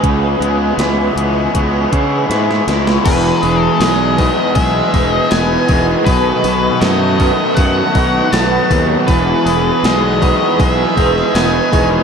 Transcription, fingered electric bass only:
X:1
M:4/4
L:1/8
Q:1/4=80
K:E
V:1 name="Fingered electric bass" clef=bass
C,, C,, C,, C,, C,, C, G,, C,, | E,,, E,,, B,,,2 B,,, E,,, E,,, E,,, | B,,, B,,, F,,2 F,, B,,, B,,, D,, | E,,, E,,, B,,,2 B,,, E,,, E,,, E,,, |]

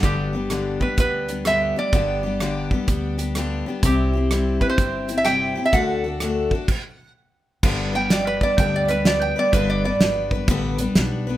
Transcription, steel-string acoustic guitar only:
X:1
M:4/4
L:1/8
Q:"Swing" 1/4=126
K:G
V:1 name="Steel-string acoustic guitar"
[G,,D,G,B,DG] [G,B,DG] [G,,D,G,B,DG] [G,B,DG] [G,B,DG] [G,B,DG] [G,,D,G,B,DG] [G,B,DG] | [G,,D,G,B,DG] [G,B,DG] [G,,D,G,B,DG] [G,B,DG] [G,B,DG] [G,B,DG] [G,,D,G,B,DG] [G,B,DG] | [C,G,CEG] [CEG] [C,G,CEG] [CEG] [G,CEG] [CEG] [C,G,CEG] [CEG] | [D,A,DFA] [DFA] [D,A,DFA] [DFA] z4 |
[G,,D,G,B,DB] [G,B,DB] [G,B,DB] [G,B,DB] [G,,D,G,B,DB] [G,B,DB] [G,B,DB] [G,B,DB] | [G,,D,G,B,DB] [G,B,DB] [G,B,DB] [G,B,DB] [G,,D,G,B,DB] [G,B,DB] [G,B,DB] [G,B,DB] |]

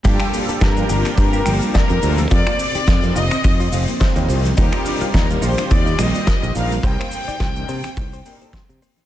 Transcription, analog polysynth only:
X:1
M:4/4
L:1/16
Q:"Swing 16ths" 1/4=106
K:Gm
V:1 name="Analog polysynth"
[G,B,DFA]4- [G,B,DFA] [G,B,DFG]8- [G,B,DFG] [G,B,DFA] z | [G,CEFB] z4 [G,CEFB] z6 [G,CEFc] [G,CEFc]2 z | [G,EFBd]4- [G,EFBd] [E,G,FG]8- [E,G,FG] [G,DEFB] z | [G,CDEB] z4 [G,CDEB] z4 [G,CDEB] [G,CDEA] z4 |]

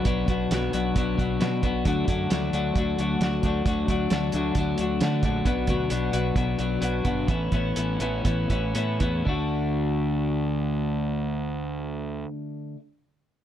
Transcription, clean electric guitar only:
X:1
M:4/4
L:1/8
Q:1/4=132
K:D
V:1 name="Clean electric guitar"
[B,,F,B,DF] [B,,F,B,DF] [B,,F,B,DF] [B,,F,B,DF] [B,,F,B,DF] [B,,F,B,DF] [B,,F,B,DF] [B,,F,B,DF] | [D,F,A,DF] [D,F,A,DF] [D,F,A,DF] [D,F,A,DF] [D,F,A,DF] [D,F,A,DF] [D,F,A,DF] [D,F,A,DF] | [D,F,A,DF] [D,F,A,DF] [D,F,A,DF] [D,F,A,DF] [D,F,A,DF] [D,F,A,DF] [D,F,A,DF] [D,F,A,DF] | [B,,F,B,DF] [B,,F,B,DF] [B,,F,B,DF] [B,,F,B,DF] [B,,F,B,DF] [B,,F,B,DF] [B,,F,B,DF] [B,,F,B,DF] |
[A,,E,B,CE] [A,,E,B,CE] [A,,E,B,CE] [A,,E,B,CE] [A,,E,B,CE] [A,,E,B,CE] [A,,E,B,CE] [A,,E,B,CE] | [D,A,DF]8- | [D,A,DF]8 |]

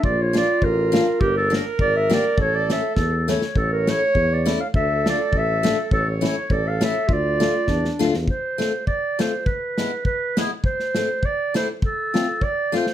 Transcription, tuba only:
X:1
M:2/4
L:1/16
Q:"Swing" 1/4=102
K:Dm
V:1 name="Tuba" clef=bass
B,,,4 A,,,4 | G,,,4 ^G,,,4 | A,,,4 E,,4 | A,,,4 E,,4 |
D,,4 A,,,4 | A,,,4 A,,,4 | D,,4 E,,2 D,, E,, | [K:F] z8 |
z8 | z8 | z8 |]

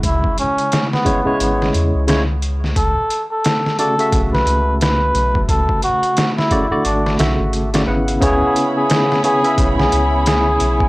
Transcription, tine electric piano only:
X:1
M:4/4
L:1/16
Q:"Swing 16ths" 1/4=88
K:C#phr
V:1 name="Tine electric piano"
[C,G,Ee]6 [C,G,Ec] [C,G,Ec]4- [C,G,Ec] [C,G,Ec] z3 | z6 [C,A,Fd] [C,A,Fe]8- [C,A,Fe]- | [C,A,Fe]6 [C,A,Fd] [D,A,Fd]3 [C,A,Fe]3 [C,A,Fd] [C,B,Ef]2 | [C,B,Ec]6 [C,B,Ec] [C,B,Ee]8- [C,B,Ee] |]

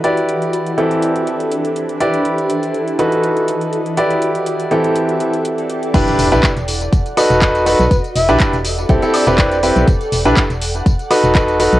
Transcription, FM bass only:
X:1
M:4/4
L:1/16
Q:"Swing 16ths" 1/4=122
K:Em
V:1 name="FM bass" clef=bass
z16 | z16 | z16 | E,,, z E,,, B,,, z E,,,3 E,,, z2 E,,,4 B,,, |
E,,, z E,,, B,,, z E,,,3 B,,, z2 E,,,4 B,,, | E,,, z E,,, B,,, z E,,,3 E,,, z2 E,,,4 B,,, |]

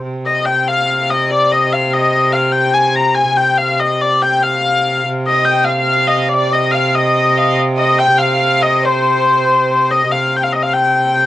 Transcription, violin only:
X:1
M:6/8
L:1/8
Q:3/8=96
K:Cm
V:1 name="Violin"
z6 | z6 | z6 | z6 |
z e2 f f2 | d e f e2 f | z e g f2 e | c4- c z |
z6 |]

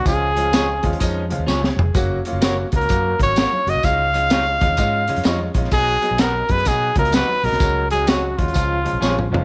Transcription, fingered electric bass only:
X:1
M:4/4
L:1/16
Q:"Swing" 1/4=127
K:C#mix
V:1 name="Fingered electric bass" clef=bass
C,,6 D,,2 E,,3 D,, C,,2 E,,,2 | F,,,2 z F,,,3 C,,2 F,,2 G,,,3 z F,,, ^B,,, | C,,6 D,,2 G,,3 F,, E,,2 A,,,2 | B,,,2 z B,,,3 F,,2 B,,2 C,,3 z B,,, ^B,,, |
C,,6 D,,2 C,,3 B,,, A,,,2 E,,,2 |]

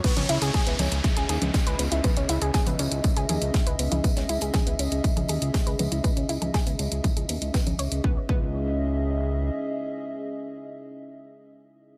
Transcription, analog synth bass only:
X:1
M:4/4
L:1/16
Q:1/4=120
K:C#m
V:1 name="Analog synth bass" clef=bass
z C,, C,, C,, z C,, C,, C,, z C,, D,, C,, z C,, C,, C,, | z C,, C,, C,, z C,, C,, C,, z C,, D,, C,, z C,, C,, C,, | z C,, C,, C,, z C,, C,, C,, z C,, D,, C,, z C,, C,, C,, | z C,, C,, C,, z C,, C,, C,, z C,, D,, C,, z C,, C,, C,, |
C,, z C,,8- C,,2 z4 | z16 |]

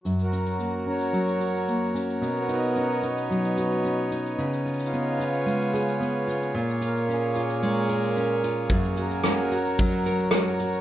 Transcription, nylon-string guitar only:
X:1
M:4/4
L:1/8
Q:1/4=111
K:F#
V:1 name="Nylon-string guitar"
F,, C A, C F, F A, C | B,, D C D F, F C D | C, E B, E G, G B, E | A,, E C E G, A C E |
F,, F C F F, A C F |]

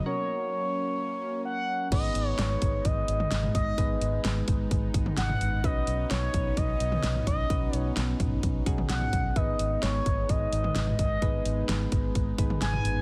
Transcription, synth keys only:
X:1
M:4/4
L:1/8
Q:1/4=129
K:G#m
V:1 name="Synth keys"
[CFAc]8 | [B,DGB]8 | [B,DGB]8 | [CDFB]8 |
[CDFB]4- [CDFB] [CDFG]3 | [B,DGB]8 | [B,DGB]4- [B,DGB] [B,DGB]3 |]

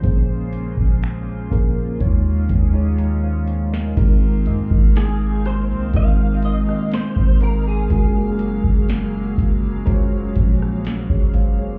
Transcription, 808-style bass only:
X:1
M:4/4
L:1/16
Q:1/4=61
K:Ab
V:1 name="808-style bass" clef=bass
B,,,3 B,,,3 B,,,2 E,,2 E,,6 | A,,,2 A,, A,,,4 C,, A,,,3 z2 A,,,3 | _G,,,3 G,,,3 G,,,2 G,,,2 B,,,3 G,,,3 |]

